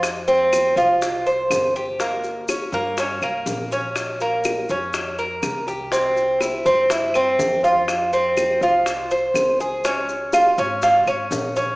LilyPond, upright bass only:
\new Staff \with { instrumentName = "Upright bass" } { \clef bass \time 4/4 \key f \minor \tempo 4 = 122 f,4. c,4. g,,4~ | g,,4. g,4 c,8 bes,,4~ | bes,,4. f,4. c,4~ | c,4. g,4. f,4~ |
f,4. c,4. des,4~ | des,4. aes,,4 aes,,8 bes,,4 | }